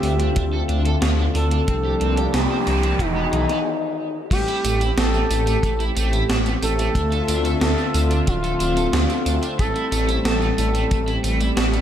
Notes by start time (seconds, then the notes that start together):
Already playing: D3 A3 C4 F4 G4 E5
0.03 D2 D4, open hi-hat
0.20 D4, closed hi-hat
0.36 D2 D4, kick, closed hi-hat
0.53 A4
0.69 D2 D4, closed hi-hat
0.85 A4, closed hi-hat
1.02 D2 F4, snare, closed hi-hat
1.19 D4
1.35 D2 D4 A4, open hi-hat
1.51 D4, closed hi-hat
1.68 C2 C3 F3 G3 A#3 C4 D4, kick, closed hi-hat, noise sweep
1.85 G4
2.01 C2 C4, closed hi-hat
2.17 G4, closed hi-hat
2.34 C2 E4 G4, snare, closed hi-hat
2.50 C4
2.67 C2 C4, open hi-hat
2.83 C4, closed hi-hat
2.99 E1 E3 B3 D#4 F#4 G#4, kick, closed hi-hat
3.16 B3
3.33 B1 E3, closed hi-hat
3.49 B3, snare, closed hi-hat
4.31 A1 A3 C4 G4, kick, closed hi-hat, crash, tambourine
4.48 E4, closed hi-hat, tambourine
4.65 A1 A3, closed hi-hat, tambourine
4.81 E4, closed hi-hat, tambourine
4.98 A1 C4 A4, snare, closed hi-hat, tambourine
5.14 A3, tambourine
5.31 A1 A3, open hi-hat, tambourine
5.47 A3, closed hi-hat, tambourine
5.63 A1 A3, kick, closed hi-hat, tambourine
5.80 E4, closed hi-hat, tambourine
5.96 A1 A3, closed hi-hat, tambourine
6.13 E4, closed hi-hat, tambourine
6.29 A1 C4, snare, closed hi-hat, tambourine
6.46 A3, closed hi-hat, tambourine
6.62 A1 A3 A4, open hi-hat, tambourine
6.79 A3, closed hi-hat, tambourine
6.95 D2 D3 D4 F4 E5, kick, closed hi-hat, tambourine
7.12 A4, closed hi-hat, tambourine
7.28 D2 D4, closed hi-hat, tambourine
7.45 A4, closed hi-hat, tambourine
7.61 D2 F4 A4, snare, closed hi-hat, tambourine
7.78 D4, tambourine
7.94 D2 D4, open hi-hat, tambourine
8.11 D4, closed hi-hat, tambourine
8.27 D1 D4 F4, kick, closed hi-hat, tambourine
8.44 A4, closed hi-hat, tambourine
8.60 D1 D4, closed hi-hat, tambourine
8.77 A4, closed hi-hat, tambourine
8.93 D2 F4, snare, closed hi-hat, tambourine
9.10 D4, closed hi-hat, tambourine
9.26 D2 D4, open hi-hat, tambourine
9.43 D4, closed hi-hat, tambourine
9.59 A1 G3 A3 A4, kick, closed hi-hat, tambourine
9.76 E4, closed hi-hat, tambourine
9.92 A1 A3, closed hi-hat, tambourine
10.09 E4, closed hi-hat, tambourine
10.25 A1 C4 A4, snare, closed hi-hat, tambourine
10.42 A3, tambourine
10.58 A1 A3, open hi-hat, tambourine
10.75 A3, closed hi-hat, tambourine
10.91 A1 A3, kick, closed hi-hat, tambourine
11.07 E4, closed hi-hat, tambourine
11.24 A1 A3, closed hi-hat, tambourine
11.41 E4, closed hi-hat, tambourine
11.57 A1 C4, snare, closed hi-hat, tambourine
11.73 A3, closed hi-hat, tambourine